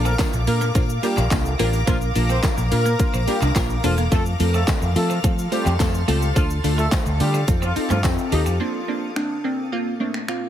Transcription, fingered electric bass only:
0.00 0.14 A#1 loud
0.34 0.45 A#1 loud
0.47 0.70 A#2 loud
0.75 0.98 A#2 loud
1.17 1.29 A#1 loud
1.31 1.54 C2 loud
1.59 1.82 A1 medium
1.87 2.10 A#1 loud
2.16 2.38 A#1 loud
2.58 2.69 A#1 loud
2.72 2.94 A#2 loud
3.14 3.25 A#1 loud
3.42 3.53 C2 medium
3.84 4.06 E1 medium
4.12 4.34 F2 loud
4.40 4.62 F2 loud
4.82 4.93 F2 loud
4.96 5.18 F3 medium
5.24 5.46 F3 loud
5.66 5.77 F2 medium
6.08 6.30 C#2 loud
6.36 6.59 D2 loud
6.64 6.86 D2 loud
7.06 7.17 D2 loud
7.20 7.43 D3 loud
7.48 7.71 F2 loud
7.76 muted fingered electric bass stroke medium
7.90 8.01 G2 medium
8.04 8.15 F2 loud
8.32 8.43 D#2 medium
8.46 8.58 F2 loud

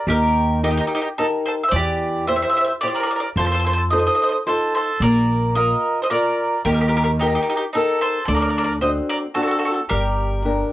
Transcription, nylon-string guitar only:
0.08 0.61 D#3 medium
0.63 1.07 D#4 soft
0.63 1.06 G4 soft
0.63 1.07 A#4 soft
1.19 1.62 D#4 soft
1.19 1.62 G4 soft
1.19 1.62 A#4 medium
1.74 2.26 E3 medium
2.28 2.71 E4 soft
2.28 2.71 G4 soft
2.28 2.71 C5 medium
2.83 3.26 E4 soft
2.83 3.26 G4 soft
2.83 3.26 C5 soft
3.37 3.89 F3 medium
3.92 4.35 D#4 soft
3.92 4.35 F4 soft
3.92 4.35 A4 soft
4.46 4.90 D#4 soft
4.46 4.90 F4 soft
4.46 4.90 A4 soft
5.02 5.54 A#3 medium
5.55 5.99 F4 soft
5.55 5.99 A#4 soft
5.55 6.00 F5 soft
6.11 6.54 F4 soft
6.11 6.54 A#4 soft
6.11 6.55 D5 soft
6.66 7.18 D#3 medium
7.21 7.64 D#4 soft
7.21 7.64 G4 soft
7.21 7.64 A#4 soft
7.75 8.18 D#4 soft
7.75 8.18 G4 soft
7.75 8.18 A#4 soft
8.28 8.80 D3 medium
8.81 9.25 C4 soft
8.81 9.25 D4 soft
8.81 9.25 F#4 soft
9.35 9.79 C4 soft
9.35 9.80 D4 soft
9.35 9.80 F#4 medium
9.90 10.43 G3 medium
10.45 10.72 D4 soft
10.45 10.72 G4 soft
10.45 10.72 A#4 soft

